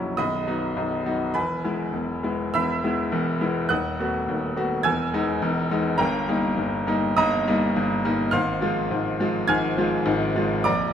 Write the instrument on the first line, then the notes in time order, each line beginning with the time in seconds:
grand piano
Already playing: A#0 A#1 F#3 C#4 E4 C#5 A#5 C#6
0.17 B0 B1 D#5 B5 D#6
0.47 F#3 B3 D#4
0.77 B0 B1
1.06 F#3 B3 D#4
1.34 E1 E2 B4 G#5 B5
1.64 G#3 B3 E4
1.93 E1 E2
2.23 G#3 B3 E4
2.54 E1 E2 E5 B5 E6
2.84 G#3 B3 E4
3.12 E1 E2
3.41 G#3 B3 E4
3.69 D#1 D#2 F#5 D#6 F#6
4.00 A3 B3 F#4
4.28 D#1 D#2
4.57 A3 B3 F#4
4.83 E1 E2 G#5 E6 G#6
5.13 G#3 B3 D#4
5.42 E1 E2
5.70 G#3 B3 D#4
5.98 G1 G2 A#4 G5 A#5
6.28 G3 A#3 D#4
6.57 G1 G2
6.87 G3 A#3 D#4
7.17 G1 G2 D#5 A#5 D#6
7.47 G3 A#3 D#4
7.76 G1 G2
8.04 G3 A#3 D#4
8.31 G#1 G#2 F5 C6 F6
8.61 F3 G#3 F4
8.91 G#1 G#2
9.20 F3 G#3 F4
9.48 G#1 G#2 G#5 F6 G#6
9.77 F3 G#3 F4
10.06 G#1 G#2
10.35 F3 G#3 F4
10.64 A#0 A#1 D5 A#5 D6